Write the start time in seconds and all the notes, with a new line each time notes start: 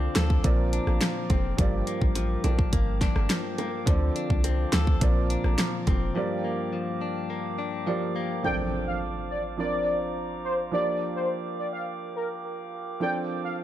Already playing: D3 F3 C4 D4 A4 C5 D5 F5 A5 D6
0.15 D2 A4, cross-stick, snare, closed hi-hat, high bongo, low bongo
0.30 kick
0.43 A#1 A#2 F3 C4 A#4 D5 A#5, kick, closed hi-hat
0.73 D4, closed hi-hat
0.87 A1, cross-stick, high bongo
1.01 F3, cross-stick, snare, closed hi-hat
1.30 F1 C4, kick, closed hi-hat, high bongo, low bongo
1.57 G1 G2 F3 A#3 G4 A#4 D5 G5, kick, closed hi-hat
1.87 A#3, closed hi-hat
2.01 A1, kick
2.15 F3, closed hi-hat, high bongo
2.44 A#1 D4, closed hi-hat, high bongo, low bongo
2.59 kick
2.73 G1 A#3, kick, closed hi-hat
3.01 D4, kick, snare, closed hi-hat
3.16 G1, cross-stick, high bongo
3.30 F3, cross-stick, snare, closed hi-hat
3.58 A#3, closed hi-hat, high bongo, low bongo
3.86 D2 D3 F3 C4 A4 C5 D5 A5, kick, closed hi-hat
4.16 D4, closed hi-hat
4.30 C2, kick
4.44 C4, closed hi-hat, high bongo
4.73 D2 A4, cross-stick, snare, closed hi-hat, high bongo, low bongo
4.87 kick
5.00 A#1 A#2 F3 C4 A#4 C5 D5 A#5, kick, closed hi-hat
5.30 D4, closed hi-hat
5.44 A1, cross-stick, high bongo
5.58 F3, cross-stick, snare, closed hi-hat
5.87 F1 C4, kick, closed hi-hat, high bongo, low bongo
6.14 G2 F3 A#3 G4 A#4 D5 F5 G5
6.44 A#3
6.73 F3
7.01 D4
7.30 A#3
7.59 D4
7.86 F3 A#3 G4 D5
8.16 A#3
8.43 F3 C4 D4 A4 C5 D5 F5 G5 A5 D6, impact
8.87 F5
9.30 D5
9.57 F3 C4 D4 A#4 C5 D5 A#5
10.44 C5
10.71 F3 A#3 D4 G4 A#4 D5 G5
11.16 C5
11.59 D5
11.73 F5
12.16 A#4
13.00 F3 C4 D4 A4 C5 D5 G5 A5
13.44 F5